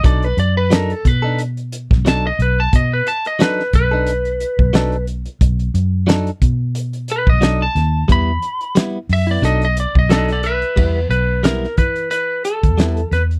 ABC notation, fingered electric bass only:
X:1
M:4/4
L:1/16
Q:"Swing 16ths" 1/4=90
K:Em
V:1 name="Fingered electric bass" clef=bass
B,,,2 F,,4 B,,4- B,, B,,,3 B,,,2 | B,,2 z4 B,,,4- B,,, B,,,4- B,,, | B,,,2 F,,4 B,,4- B,, B,,,3 ^D,,2 | E,,2 z4 F,,2 B,,,3 B,,,4- B,,, |
E,,2 B,,,4 E,4- E, E,,3 E,,2 |]